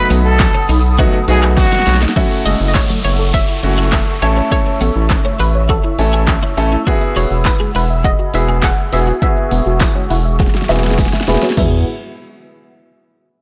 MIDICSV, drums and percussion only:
0, 0, Header, 1, 2, 480
1, 0, Start_track
1, 0, Key_signature, 4, "major"
1, 0, Tempo, 588235
1, 1765, Time_signature, 4, 2, 24, 8
1, 10949, End_track
2, 0, Start_track
2, 0, Title_t, "Drums"
2, 88, Note_on_c, 9, 46, 83
2, 88, Note_on_c, 9, 82, 60
2, 169, Note_off_c, 9, 46, 0
2, 169, Note_off_c, 9, 82, 0
2, 206, Note_on_c, 9, 82, 70
2, 287, Note_off_c, 9, 82, 0
2, 321, Note_on_c, 9, 38, 101
2, 325, Note_on_c, 9, 39, 124
2, 325, Note_on_c, 9, 54, 85
2, 326, Note_on_c, 9, 36, 127
2, 326, Note_on_c, 9, 42, 78
2, 326, Note_on_c, 9, 82, 77
2, 403, Note_off_c, 9, 38, 0
2, 406, Note_off_c, 9, 39, 0
2, 406, Note_off_c, 9, 54, 0
2, 408, Note_off_c, 9, 36, 0
2, 408, Note_off_c, 9, 42, 0
2, 408, Note_off_c, 9, 82, 0
2, 446, Note_on_c, 9, 82, 64
2, 527, Note_off_c, 9, 82, 0
2, 566, Note_on_c, 9, 46, 72
2, 566, Note_on_c, 9, 82, 52
2, 648, Note_off_c, 9, 46, 0
2, 648, Note_off_c, 9, 82, 0
2, 687, Note_on_c, 9, 82, 74
2, 768, Note_off_c, 9, 82, 0
2, 805, Note_on_c, 9, 36, 114
2, 808, Note_on_c, 9, 42, 84
2, 808, Note_on_c, 9, 82, 81
2, 887, Note_off_c, 9, 36, 0
2, 890, Note_off_c, 9, 42, 0
2, 890, Note_off_c, 9, 82, 0
2, 928, Note_on_c, 9, 82, 52
2, 1009, Note_off_c, 9, 82, 0
2, 1044, Note_on_c, 9, 46, 85
2, 1044, Note_on_c, 9, 82, 59
2, 1126, Note_off_c, 9, 46, 0
2, 1126, Note_off_c, 9, 82, 0
2, 1164, Note_on_c, 9, 39, 67
2, 1166, Note_on_c, 9, 82, 72
2, 1246, Note_off_c, 9, 39, 0
2, 1248, Note_off_c, 9, 82, 0
2, 1284, Note_on_c, 9, 36, 116
2, 1284, Note_on_c, 9, 42, 79
2, 1284, Note_on_c, 9, 54, 91
2, 1284, Note_on_c, 9, 82, 80
2, 1285, Note_on_c, 9, 38, 67
2, 1345, Note_off_c, 9, 38, 0
2, 1345, Note_on_c, 9, 38, 66
2, 1365, Note_off_c, 9, 42, 0
2, 1365, Note_off_c, 9, 82, 0
2, 1366, Note_off_c, 9, 36, 0
2, 1366, Note_off_c, 9, 54, 0
2, 1405, Note_off_c, 9, 38, 0
2, 1405, Note_on_c, 9, 38, 77
2, 1406, Note_on_c, 9, 82, 61
2, 1464, Note_off_c, 9, 38, 0
2, 1464, Note_on_c, 9, 38, 70
2, 1487, Note_off_c, 9, 82, 0
2, 1524, Note_off_c, 9, 38, 0
2, 1524, Note_on_c, 9, 38, 103
2, 1524, Note_on_c, 9, 46, 80
2, 1524, Note_on_c, 9, 82, 53
2, 1585, Note_off_c, 9, 38, 0
2, 1585, Note_on_c, 9, 38, 91
2, 1605, Note_off_c, 9, 46, 0
2, 1605, Note_off_c, 9, 82, 0
2, 1645, Note_off_c, 9, 38, 0
2, 1645, Note_on_c, 9, 38, 110
2, 1646, Note_on_c, 9, 82, 84
2, 1704, Note_off_c, 9, 38, 0
2, 1704, Note_on_c, 9, 38, 101
2, 1728, Note_off_c, 9, 82, 0
2, 1765, Note_on_c, 9, 36, 103
2, 1765, Note_on_c, 9, 42, 81
2, 1765, Note_on_c, 9, 82, 82
2, 1786, Note_off_c, 9, 38, 0
2, 1846, Note_off_c, 9, 36, 0
2, 1847, Note_off_c, 9, 42, 0
2, 1847, Note_off_c, 9, 82, 0
2, 1886, Note_on_c, 9, 82, 57
2, 1968, Note_off_c, 9, 82, 0
2, 2006, Note_on_c, 9, 42, 59
2, 2006, Note_on_c, 9, 82, 57
2, 2088, Note_off_c, 9, 42, 0
2, 2088, Note_off_c, 9, 82, 0
2, 2124, Note_on_c, 9, 82, 68
2, 2206, Note_off_c, 9, 82, 0
2, 2239, Note_on_c, 9, 38, 94
2, 2243, Note_on_c, 9, 39, 120
2, 2244, Note_on_c, 9, 42, 74
2, 2244, Note_on_c, 9, 82, 72
2, 2245, Note_on_c, 9, 36, 120
2, 2321, Note_off_c, 9, 38, 0
2, 2324, Note_off_c, 9, 39, 0
2, 2326, Note_off_c, 9, 42, 0
2, 2326, Note_off_c, 9, 82, 0
2, 2327, Note_off_c, 9, 36, 0
2, 2363, Note_on_c, 9, 82, 59
2, 2445, Note_off_c, 9, 82, 0
2, 2485, Note_on_c, 9, 42, 45
2, 2485, Note_on_c, 9, 82, 47
2, 2566, Note_off_c, 9, 42, 0
2, 2566, Note_off_c, 9, 82, 0
2, 2604, Note_on_c, 9, 82, 66
2, 2686, Note_off_c, 9, 82, 0
2, 2724, Note_on_c, 9, 36, 108
2, 2727, Note_on_c, 9, 42, 75
2, 2727, Note_on_c, 9, 82, 73
2, 2806, Note_off_c, 9, 36, 0
2, 2808, Note_off_c, 9, 42, 0
2, 2808, Note_off_c, 9, 82, 0
2, 2846, Note_on_c, 9, 82, 47
2, 2927, Note_off_c, 9, 82, 0
2, 2964, Note_on_c, 9, 42, 55
2, 2964, Note_on_c, 9, 82, 54
2, 3046, Note_off_c, 9, 42, 0
2, 3046, Note_off_c, 9, 82, 0
2, 3087, Note_on_c, 9, 82, 67
2, 3169, Note_off_c, 9, 82, 0
2, 3199, Note_on_c, 9, 38, 91
2, 3203, Note_on_c, 9, 39, 110
2, 3204, Note_on_c, 9, 42, 77
2, 3204, Note_on_c, 9, 82, 75
2, 3205, Note_on_c, 9, 36, 109
2, 3281, Note_off_c, 9, 38, 0
2, 3284, Note_off_c, 9, 39, 0
2, 3286, Note_off_c, 9, 36, 0
2, 3286, Note_off_c, 9, 42, 0
2, 3286, Note_off_c, 9, 82, 0
2, 3327, Note_on_c, 9, 82, 56
2, 3408, Note_off_c, 9, 82, 0
2, 3447, Note_on_c, 9, 42, 51
2, 3447, Note_on_c, 9, 82, 52
2, 3528, Note_off_c, 9, 42, 0
2, 3528, Note_off_c, 9, 82, 0
2, 3566, Note_on_c, 9, 82, 77
2, 3648, Note_off_c, 9, 82, 0
2, 3685, Note_on_c, 9, 36, 105
2, 3685, Note_on_c, 9, 42, 78
2, 3685, Note_on_c, 9, 82, 84
2, 3766, Note_off_c, 9, 36, 0
2, 3767, Note_off_c, 9, 42, 0
2, 3767, Note_off_c, 9, 82, 0
2, 3807, Note_on_c, 9, 82, 57
2, 3888, Note_off_c, 9, 82, 0
2, 3926, Note_on_c, 9, 46, 78
2, 3926, Note_on_c, 9, 82, 57
2, 4008, Note_off_c, 9, 46, 0
2, 4008, Note_off_c, 9, 82, 0
2, 4045, Note_on_c, 9, 82, 66
2, 4127, Note_off_c, 9, 82, 0
2, 4160, Note_on_c, 9, 38, 101
2, 4164, Note_on_c, 9, 39, 120
2, 4166, Note_on_c, 9, 36, 121
2, 4166, Note_on_c, 9, 42, 74
2, 4166, Note_on_c, 9, 82, 75
2, 4242, Note_off_c, 9, 38, 0
2, 4245, Note_off_c, 9, 39, 0
2, 4247, Note_off_c, 9, 36, 0
2, 4247, Note_off_c, 9, 42, 0
2, 4247, Note_off_c, 9, 82, 0
2, 4283, Note_on_c, 9, 82, 59
2, 4365, Note_off_c, 9, 82, 0
2, 4405, Note_on_c, 9, 46, 66
2, 4405, Note_on_c, 9, 82, 46
2, 4487, Note_off_c, 9, 46, 0
2, 4487, Note_off_c, 9, 82, 0
2, 4525, Note_on_c, 9, 82, 68
2, 4606, Note_off_c, 9, 82, 0
2, 4645, Note_on_c, 9, 36, 112
2, 4648, Note_on_c, 9, 42, 77
2, 4648, Note_on_c, 9, 82, 77
2, 4726, Note_off_c, 9, 36, 0
2, 4729, Note_off_c, 9, 42, 0
2, 4729, Note_off_c, 9, 82, 0
2, 4768, Note_on_c, 9, 82, 51
2, 4849, Note_off_c, 9, 82, 0
2, 4885, Note_on_c, 9, 46, 82
2, 4885, Note_on_c, 9, 82, 57
2, 4966, Note_off_c, 9, 46, 0
2, 4966, Note_off_c, 9, 82, 0
2, 5007, Note_on_c, 9, 82, 67
2, 5088, Note_off_c, 9, 82, 0
2, 5120, Note_on_c, 9, 38, 87
2, 5124, Note_on_c, 9, 39, 113
2, 5125, Note_on_c, 9, 36, 112
2, 5125, Note_on_c, 9, 42, 78
2, 5125, Note_on_c, 9, 82, 78
2, 5202, Note_off_c, 9, 38, 0
2, 5206, Note_off_c, 9, 39, 0
2, 5207, Note_off_c, 9, 36, 0
2, 5207, Note_off_c, 9, 42, 0
2, 5207, Note_off_c, 9, 82, 0
2, 5247, Note_on_c, 9, 82, 57
2, 5328, Note_off_c, 9, 82, 0
2, 5366, Note_on_c, 9, 46, 73
2, 5366, Note_on_c, 9, 82, 50
2, 5448, Note_off_c, 9, 46, 0
2, 5448, Note_off_c, 9, 82, 0
2, 5487, Note_on_c, 9, 82, 77
2, 5568, Note_off_c, 9, 82, 0
2, 5605, Note_on_c, 9, 36, 109
2, 5606, Note_on_c, 9, 42, 83
2, 5606, Note_on_c, 9, 82, 80
2, 5687, Note_off_c, 9, 36, 0
2, 5687, Note_off_c, 9, 42, 0
2, 5687, Note_off_c, 9, 82, 0
2, 5726, Note_on_c, 9, 82, 58
2, 5808, Note_off_c, 9, 82, 0
2, 5847, Note_on_c, 9, 46, 80
2, 5847, Note_on_c, 9, 82, 57
2, 5928, Note_off_c, 9, 46, 0
2, 5928, Note_off_c, 9, 82, 0
2, 5965, Note_on_c, 9, 82, 72
2, 6046, Note_off_c, 9, 82, 0
2, 6079, Note_on_c, 9, 38, 97
2, 6083, Note_on_c, 9, 39, 115
2, 6084, Note_on_c, 9, 42, 75
2, 6084, Note_on_c, 9, 82, 75
2, 6085, Note_on_c, 9, 36, 120
2, 6086, Note_on_c, 9, 54, 85
2, 6161, Note_off_c, 9, 38, 0
2, 6164, Note_off_c, 9, 39, 0
2, 6166, Note_off_c, 9, 42, 0
2, 6166, Note_off_c, 9, 82, 0
2, 6167, Note_off_c, 9, 36, 0
2, 6167, Note_off_c, 9, 54, 0
2, 6202, Note_on_c, 9, 82, 60
2, 6284, Note_off_c, 9, 82, 0
2, 6324, Note_on_c, 9, 46, 69
2, 6324, Note_on_c, 9, 82, 47
2, 6406, Note_off_c, 9, 46, 0
2, 6406, Note_off_c, 9, 82, 0
2, 6444, Note_on_c, 9, 82, 70
2, 6525, Note_off_c, 9, 82, 0
2, 6564, Note_on_c, 9, 36, 113
2, 6567, Note_on_c, 9, 42, 79
2, 6567, Note_on_c, 9, 82, 76
2, 6646, Note_off_c, 9, 36, 0
2, 6648, Note_off_c, 9, 42, 0
2, 6648, Note_off_c, 9, 82, 0
2, 6686, Note_on_c, 9, 82, 52
2, 6767, Note_off_c, 9, 82, 0
2, 6803, Note_on_c, 9, 46, 83
2, 6803, Note_on_c, 9, 82, 58
2, 6885, Note_off_c, 9, 46, 0
2, 6885, Note_off_c, 9, 82, 0
2, 6925, Note_on_c, 9, 82, 68
2, 7007, Note_off_c, 9, 82, 0
2, 7038, Note_on_c, 9, 38, 91
2, 7041, Note_on_c, 9, 39, 116
2, 7043, Note_on_c, 9, 42, 81
2, 7043, Note_on_c, 9, 82, 77
2, 7044, Note_on_c, 9, 36, 113
2, 7045, Note_on_c, 9, 54, 86
2, 7119, Note_off_c, 9, 38, 0
2, 7123, Note_off_c, 9, 39, 0
2, 7124, Note_off_c, 9, 42, 0
2, 7124, Note_off_c, 9, 82, 0
2, 7125, Note_off_c, 9, 36, 0
2, 7126, Note_off_c, 9, 54, 0
2, 7164, Note_on_c, 9, 82, 57
2, 7245, Note_off_c, 9, 82, 0
2, 7283, Note_on_c, 9, 46, 75
2, 7283, Note_on_c, 9, 82, 52
2, 7365, Note_off_c, 9, 46, 0
2, 7365, Note_off_c, 9, 82, 0
2, 7404, Note_on_c, 9, 82, 78
2, 7486, Note_off_c, 9, 82, 0
2, 7523, Note_on_c, 9, 42, 85
2, 7523, Note_on_c, 9, 82, 82
2, 7524, Note_on_c, 9, 36, 112
2, 7605, Note_off_c, 9, 36, 0
2, 7605, Note_off_c, 9, 42, 0
2, 7605, Note_off_c, 9, 82, 0
2, 7644, Note_on_c, 9, 82, 60
2, 7726, Note_off_c, 9, 82, 0
2, 7763, Note_on_c, 9, 46, 81
2, 7763, Note_on_c, 9, 82, 58
2, 7845, Note_off_c, 9, 46, 0
2, 7845, Note_off_c, 9, 82, 0
2, 7883, Note_on_c, 9, 82, 72
2, 7964, Note_off_c, 9, 82, 0
2, 8000, Note_on_c, 9, 38, 96
2, 8004, Note_on_c, 9, 39, 127
2, 8004, Note_on_c, 9, 54, 88
2, 8005, Note_on_c, 9, 36, 125
2, 8006, Note_on_c, 9, 42, 73
2, 8006, Note_on_c, 9, 82, 75
2, 8082, Note_off_c, 9, 38, 0
2, 8086, Note_off_c, 9, 39, 0
2, 8086, Note_off_c, 9, 54, 0
2, 8087, Note_off_c, 9, 36, 0
2, 8087, Note_off_c, 9, 42, 0
2, 8087, Note_off_c, 9, 82, 0
2, 8123, Note_on_c, 9, 82, 58
2, 8205, Note_off_c, 9, 82, 0
2, 8246, Note_on_c, 9, 46, 69
2, 8246, Note_on_c, 9, 82, 49
2, 8327, Note_off_c, 9, 46, 0
2, 8327, Note_off_c, 9, 82, 0
2, 8365, Note_on_c, 9, 82, 68
2, 8447, Note_off_c, 9, 82, 0
2, 8484, Note_on_c, 9, 36, 116
2, 8484, Note_on_c, 9, 38, 60
2, 8487, Note_on_c, 9, 42, 79
2, 8487, Note_on_c, 9, 82, 81
2, 8545, Note_off_c, 9, 38, 0
2, 8545, Note_on_c, 9, 38, 53
2, 8565, Note_off_c, 9, 36, 0
2, 8568, Note_off_c, 9, 42, 0
2, 8568, Note_off_c, 9, 82, 0
2, 8606, Note_off_c, 9, 38, 0
2, 8606, Note_on_c, 9, 38, 67
2, 8607, Note_on_c, 9, 82, 53
2, 8665, Note_off_c, 9, 38, 0
2, 8665, Note_on_c, 9, 38, 58
2, 8689, Note_off_c, 9, 82, 0
2, 8724, Note_on_c, 9, 46, 82
2, 8724, Note_on_c, 9, 82, 60
2, 8725, Note_off_c, 9, 38, 0
2, 8725, Note_on_c, 9, 38, 74
2, 8785, Note_off_c, 9, 38, 0
2, 8785, Note_on_c, 9, 38, 70
2, 8805, Note_off_c, 9, 46, 0
2, 8805, Note_off_c, 9, 82, 0
2, 8846, Note_off_c, 9, 38, 0
2, 8846, Note_on_c, 9, 38, 80
2, 8847, Note_on_c, 9, 82, 66
2, 8905, Note_off_c, 9, 38, 0
2, 8905, Note_on_c, 9, 38, 68
2, 8928, Note_off_c, 9, 82, 0
2, 8963, Note_on_c, 9, 54, 88
2, 8964, Note_on_c, 9, 36, 116
2, 8964, Note_on_c, 9, 42, 77
2, 8964, Note_on_c, 9, 82, 79
2, 8965, Note_off_c, 9, 38, 0
2, 8965, Note_on_c, 9, 38, 90
2, 9026, Note_off_c, 9, 38, 0
2, 9026, Note_on_c, 9, 38, 81
2, 9044, Note_off_c, 9, 54, 0
2, 9046, Note_off_c, 9, 36, 0
2, 9046, Note_off_c, 9, 42, 0
2, 9046, Note_off_c, 9, 82, 0
2, 9085, Note_off_c, 9, 38, 0
2, 9085, Note_on_c, 9, 38, 88
2, 9085, Note_on_c, 9, 82, 58
2, 9145, Note_off_c, 9, 38, 0
2, 9145, Note_on_c, 9, 38, 81
2, 9167, Note_off_c, 9, 82, 0
2, 9203, Note_on_c, 9, 46, 73
2, 9203, Note_on_c, 9, 82, 54
2, 9204, Note_off_c, 9, 38, 0
2, 9204, Note_on_c, 9, 38, 103
2, 9263, Note_off_c, 9, 38, 0
2, 9263, Note_on_c, 9, 38, 93
2, 9285, Note_off_c, 9, 46, 0
2, 9285, Note_off_c, 9, 82, 0
2, 9323, Note_off_c, 9, 38, 0
2, 9323, Note_on_c, 9, 38, 102
2, 9324, Note_on_c, 9, 82, 80
2, 9383, Note_off_c, 9, 38, 0
2, 9383, Note_on_c, 9, 38, 87
2, 9405, Note_off_c, 9, 82, 0
2, 9444, Note_on_c, 9, 36, 99
2, 9444, Note_on_c, 9, 43, 99
2, 9444, Note_on_c, 9, 49, 93
2, 9444, Note_on_c, 9, 54, 88
2, 9465, Note_off_c, 9, 38, 0
2, 9525, Note_off_c, 9, 43, 0
2, 9525, Note_off_c, 9, 49, 0
2, 9525, Note_off_c, 9, 54, 0
2, 9526, Note_off_c, 9, 36, 0
2, 10949, End_track
0, 0, End_of_file